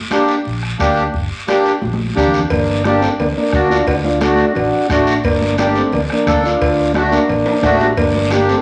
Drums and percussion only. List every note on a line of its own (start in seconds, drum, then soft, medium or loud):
0.11 bombo rim medium
0.11 high conga medium
0.11 short guiro medium
0.28 short guiro medium
0.45 high conga soft
0.45 long guiro medium
0.63 bombo rim medium
0.80 bombo low medium
0.80 bombo rim medium
0.80 high conga medium
0.80 short guiro medium
0.96 short guiro medium
1.14 bombo low medium
1.14 high conga soft
1.14 long guiro medium
1.48 bombo rim medium
1.48 high conga medium
1.48 short guiro medium
1.66 short guiro medium
1.82 high conga medium
1.82 long guiro medium
1.93 high conga medium
2.16 bombo low medium
2.16 bombo rim medium
2.16 low conga medium
2.16 short guiro medium
2.28 low conga medium
2.34 short guiro medium
2.39 low conga medium
2.50 bombo low medium
2.50 cowbell loud
2.50 high conga soft
2.50 low conga medium
2.50 long guiro medium
2.84 bombo rim medium
2.84 high conga medium
2.84 short guiro medium
3.02 short guiro medium
3.20 cowbell medium
3.20 high conga soft
3.20 low conga medium
3.20 long guiro medium
3.53 bombo low medium
3.53 bombo rim medium
3.53 high conga medium
3.53 short guiro medium
3.71 short guiro medium
3.87 bombo low medium
3.87 cowbell loud
3.87 high conga soft
3.87 long guiro medium
4.04 high conga medium
4.21 bombo rim medium
4.21 high conga loud
4.21 short guiro medium
4.37 short guiro medium
4.55 cowbell medium
4.55 high conga soft
4.55 low conga medium
4.55 long guiro medium
4.89 bombo low medium
4.89 bombo rim medium
4.89 high conga medium
4.89 short guiro medium
5.07 short guiro medium
5.24 bombo low medium
5.24 cowbell loud
5.24 long guiro medium
5.41 high conga medium
5.58 bombo rim medium
5.58 high conga medium
5.58 short guiro medium
5.75 short guiro medium
5.92 cowbell medium
5.92 high conga soft
5.92 low conga medium
5.92 long guiro medium
6.10 bombo rim medium
6.27 bombo low medium
6.27 bombo rim medium
6.27 high conga medium
6.27 low conga medium
6.27 short guiro medium
6.45 short guiro medium
6.61 bombo low medium
6.61 cowbell loud
6.61 long guiro medium
6.94 bombo rim medium
6.94 high conga medium
6.94 short guiro medium
7.12 short guiro medium
7.29 cowbell medium
7.29 high conga soft
7.29 low conga medium
7.29 long guiro medium
7.46 high timbale medium
7.63 bombo low medium
7.63 bombo rim medium
7.63 high conga medium
7.63 high timbale medium
7.63 short guiro medium
7.80 low timbale medium
7.80 short guiro medium
7.97 bombo low medium
7.97 cowbell loud
7.97 high conga soft
7.97 low conga medium
7.97 long guiro medium
8.14 high conga medium
8.30 bombo rim medium
8.30 high conga medium
8.30 short guiro medium
8.49 short guiro medium